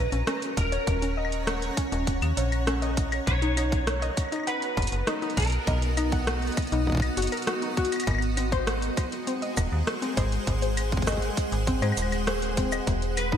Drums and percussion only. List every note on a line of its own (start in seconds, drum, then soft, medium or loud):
0.12 closed hi-hat soft
0.27 cross-stick loud
0.27 closed hi-hat medium
0.42 closed hi-hat soft
0.57 kick loud
0.57 closed hi-hat medium
0.72 closed hi-hat soft
0.87 kick loud
0.87 closed hi-hat medium
1.02 closed hi-hat soft
1.25 claves medium
1.32 closed hi-hat soft
1.47 cross-stick loud
1.47 closed hi-hat medium
1.62 closed hi-hat soft
1.77 kick loud
1.77 closed hi-hat loud
1.92 closed hi-hat soft
2.07 kick loud
2.07 closed hi-hat medium
2.22 closed hi-hat soft
2.22 claves medium
2.37 closed hi-hat loud
2.52 closed hi-hat soft
2.52 claves medium
2.67 cross-stick loud
2.67 closed hi-hat medium
2.82 closed hi-hat soft
2.97 kick loud
2.97 closed hi-hat medium
3.12 closed hi-hat soft
3.12 claves medium
3.27 kick loud
3.27 closed hi-hat medium
3.42 closed hi-hat soft
3.57 closed hi-hat loud
3.57 claves medium
3.72 kick loud
3.72 closed hi-hat soft
3.87 cross-stick loud
3.87 closed hi-hat medium
4.02 closed hi-hat soft
4.17 kick loud
4.17 closed hi-hat loud
4.17 claves soft
4.21 claves soft
4.25 claves soft
4.29 closed hi-hat soft
4.29 claves soft
4.32 claves soft
4.36 claves soft
4.40 claves soft
4.43 closed hi-hat medium
4.43 claves soft
4.62 closed hi-hat soft
4.77 kick loud
4.77 closed hi-hat soft
4.82 closed hi-hat medium
4.87 closed hi-hat medium
4.92 closed hi-hat soft
5.07 cross-stick loud
5.07 closed hi-hat medium
5.22 closed hi-hat soft
5.30 closed hi-hat soft
5.37 kick loud
5.37 closed hi-hat medium
5.40 closed hi-hat medium
5.42 closed hi-hat medium
5.45 closed hi-hat soft
5.47 closed hi-hat soft
5.50 closed hi-hat soft
5.52 closed hi-hat soft
5.67 kick loud
5.67 closed hi-hat medium
5.82 closed hi-hat soft
5.97 closed hi-hat medium
5.97 claves medium
6.12 kick loud
6.12 closed hi-hat soft
6.27 cross-stick loud
6.27 closed hi-hat medium
6.42 closed hi-hat soft
6.47 closed hi-hat soft
6.52 closed hi-hat soft
6.57 kick loud
6.57 closed hi-hat medium
6.57 claves soft
6.62 closed hi-hat soft
6.67 closed hi-hat soft
6.72 closed hi-hat soft
6.87 kick medium
6.90 kick medium
6.92 kick medium
6.95 kick medium
6.97 kick medium
7.00 kick loud
7.00 closed hi-hat soft
7.00 claves medium
7.17 closed hi-hat medium
7.22 closed hi-hat medium
7.27 closed hi-hat medium
7.32 closed hi-hat soft
7.32 claves soft
7.37 closed hi-hat soft
7.42 closed hi-hat soft
7.47 cross-stick loud
7.47 closed hi-hat medium
7.62 closed hi-hat soft
7.77 kick loud
7.77 closed hi-hat soft
7.85 closed hi-hat medium
7.92 closed hi-hat medium
7.92 claves soft
7.96 closed hi-hat medium
7.96 claves soft
8.00 claves soft
8.04 closed hi-hat medium
8.04 claves soft
8.07 kick loud
8.07 claves medium
8.11 claves medium
8.15 claves medium
8.19 closed hi-hat soft
8.19 claves medium
8.37 closed hi-hat medium
8.37 claves medium
8.52 kick loud
8.52 closed hi-hat soft
8.67 cross-stick loud
8.67 closed hi-hat medium
8.82 closed hi-hat soft
8.97 kick loud
8.97 closed hi-hat medium
8.97 claves soft
9.12 closed hi-hat soft
9.27 closed hi-hat medium
9.42 closed hi-hat soft
9.57 kick loud
9.57 closed hi-hat medium
9.57 cabasa medium
9.57 claves medium
9.87 cross-stick loud
9.87 closed hi-hat medium
10.02 closed hi-hat soft
10.17 kick loud
10.17 closed hi-hat medium
10.32 closed hi-hat soft
10.47 kick loud
10.47 closed hi-hat medium
10.62 closed hi-hat soft
10.77 closed hi-hat medium
10.77 claves medium
10.92 kick loud
10.92 closed hi-hat soft
10.97 kick medium
11.02 kick medium
11.02 closed hi-hat soft
11.07 kick medium
11.07 cross-stick loud
11.07 closed hi-hat medium
11.07 cabasa medium
11.12 kick soft
11.12 closed hi-hat soft
11.17 kick soft
11.22 closed hi-hat soft
11.37 kick loud
11.37 closed hi-hat medium
11.52 closed hi-hat soft
11.67 kick loud
11.67 closed hi-hat medium
11.82 closed hi-hat soft
11.82 claves medium
11.92 claves medium
11.97 closed hi-hat medium
11.97 cabasa medium
12.02 claves soft
12.12 closed hi-hat soft
12.12 claves medium
12.27 cross-stick loud
12.27 closed hi-hat medium
12.42 closed hi-hat soft
12.57 kick loud
12.57 closed hi-hat medium
12.72 closed hi-hat soft
12.72 cabasa medium
12.72 claves medium
12.87 kick loud
12.87 closed hi-hat medium
13.02 closed hi-hat soft
13.17 closed hi-hat medium
13.17 claves medium
13.32 kick loud